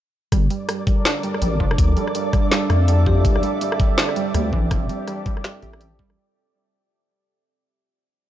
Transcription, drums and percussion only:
0.32 kick, cross-stick, closed hi-hat
0.50 closed hi-hat
0.69 cross-stick, closed hi-hat
0.87 kick, closed hi-hat
1.05 cross-stick, snare, closed hi-hat
1.23 closed hi-hat
1.34 cross-stick
1.42 closed hi-hat
1.60 kick
1.71 cross-stick
1.78 kick, closed hi-hat
1.97 closed hi-hat
2.08 cross-stick
2.15 closed hi-hat
2.33 kick, cross-stick, closed hi-hat
2.52 snare, closed hi-hat
2.70 cross-stick, closed hi-hat
2.88 closed hi-hat
3.06 kick
3.25 kick, closed hi-hat
3.36 cross-stick
3.43 closed hi-hat
3.61 closed hi-hat
3.72 cross-stick
3.80 kick, closed hi-hat
3.98 snare, closed hi-hat
4.09 cross-stick
4.16 closed hi-hat
4.34 cross-stick, closed hi-hat
4.53 kick
4.71 kick, cross-stick, closed hi-hat
4.89 closed hi-hat
5.08 cross-stick, closed hi-hat
5.26 kick, closed hi-hat
5.37 cross-stick
5.44 snare, closed hi-hat
5.62 closed hi-hat
5.73 cross-stick
5.81 closed hi-hat
5.99 kick
6.10 cross-stick

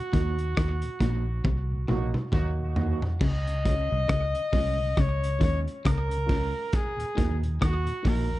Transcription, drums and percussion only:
0.13 kick, closed hi-hat
0.38 closed hi-hat
0.57 kick, cross-stick, closed hi-hat
0.82 closed hi-hat
1.00 kick, closed hi-hat
1.44 kick, high tom
1.88 mid tom
2.14 mid tom
2.32 kick, mid tom
2.76 floor tom
3.02 floor tom
3.21 kick, crash
3.47 closed hi-hat
3.65 kick, closed hi-hat
4.09 kick, cross-stick, closed hi-hat
4.35 closed hi-hat
4.53 kick, open hi-hat
4.97 kick, cross-stick, closed hi-hat
5.24 closed hi-hat
5.41 kick, closed hi-hat
5.67 closed hi-hat
5.85 kick, cross-stick, closed hi-hat
6.11 closed hi-hat
6.29 kick, open hi-hat
6.73 kick, closed hi-hat
7.00 closed hi-hat
7.18 kick, closed hi-hat
7.43 closed hi-hat
7.62 kick, cross-stick, closed hi-hat
7.87 closed hi-hat
8.05 kick, open hi-hat

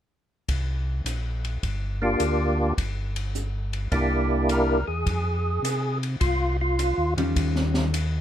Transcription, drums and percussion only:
0.48 kick, ride
1.06 hi-hat pedal, ride
1.45 ride
1.63 kick, ride
2.20 hi-hat pedal, ride
2.78 kick, ride
3.16 ride
3.35 hi-hat pedal
3.73 ride
3.92 kick, ride
4.49 hi-hat pedal, ride
5.07 kick, ride
5.65 hi-hat pedal, ride
6.03 ride
6.21 kick, ride
6.79 hi-hat pedal, ride
7.18 ride
7.36 kick, ride
7.56 snare
7.74 snare
7.94 hi-hat pedal, ride

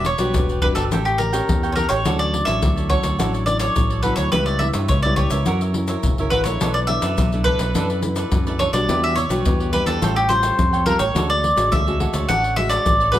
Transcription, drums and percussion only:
0.05 pandeiro
0.18 pandeiro, shaker
0.34 pandeiro, shaker, surdo
0.49 pandeiro, shaker
0.62 pandeiro, surdo
0.76 pandeiro, shaker
0.92 pandeiro, shaker, surdo
1.07 pandeiro, shaker
1.20 pandeiro
1.33 pandeiro, shaker
1.49 pandeiro, shaker, surdo
1.64 pandeiro, shaker
1.77 pandeiro
1.89 pandeiro, shaker
2.05 pandeiro, shaker, surdo
2.20 pandeiro, shaker
2.34 pandeiro
2.47 pandeiro, shaker
2.62 pandeiro, shaker, surdo
2.77 pandeiro, shaker
2.90 pandeiro, surdo
3.03 pandeiro, shaker
3.20 pandeiro, shaker, surdo
3.34 pandeiro, shaker
3.47 pandeiro, shaker
3.60 pandeiro, shaker
3.76 pandeiro, shaker, surdo
3.90 pandeiro, shaker
4.03 pandeiro
4.17 pandeiro, shaker
4.33 pandeiro, shaker, surdo
4.47 pandeiro, shaker
4.60 pandeiro
4.74 pandeiro, shaker
4.89 pandeiro, shaker, surdo
5.04 pandeiro, shaker
5.17 pandeiro, surdo
5.30 pandeiro, shaker
5.46 pandeiro, shaker, surdo
5.61 pandeiro, shaker
5.74 pandeiro
5.88 pandeiro, shaker
6.03 pandeiro, shaker, surdo
6.18 pandeiro, shaker
6.31 pandeiro
6.45 pandeiro, shaker
6.61 pandeiro, shaker, surdo
6.76 pandeiro, shaker
6.89 pandeiro
7.02 pandeiro, shaker
7.18 pandeiro, shaker, surdo
7.32 pandeiro, shaker
7.45 pandeiro, surdo
7.59 pandeiro, shaker
7.75 pandeiro, shaker, surdo
7.90 pandeiro, shaker
8.02 pandeiro, shaker
8.16 pandeiro, shaker
8.32 pandeiro, shaker, surdo
8.47 pandeiro, shaker
8.60 pandeiro
8.73 pandeiro, shaker
8.89 pandeiro, shaker, surdo
9.04 pandeiro, shaker
9.17 pandeiro, shaker
9.30 pandeiro, shaker
9.45 pandeiro, shaker, surdo
9.60 pandeiro, shaker
9.73 pandeiro
9.87 pandeiro, shaker
10.02 pandeiro, shaker, surdo
10.17 pandeiro, shaker
10.30 pandeiro, shaker
10.43 pandeiro, shaker
10.59 pandeiro, shaker, surdo
10.74 pandeiro, shaker
10.86 pandeiro
11.00 pandeiro, shaker
11.16 pandeiro, shaker, surdo
11.30 pandeiro, shaker
11.44 pandeiro
11.57 pandeiro, shaker
11.72 pandeiro, shaker, surdo
11.88 pandeiro, shaker
12.00 pandeiro, surdo
12.14 pandeiro, shaker
12.29 pandeiro, shaker, surdo
12.44 pandeiro, shaker
12.57 pandeiro
12.70 pandeiro, shaker
12.86 pandeiro, shaker, surdo
13.01 pandeiro, shaker
13.14 pandeiro, shaker

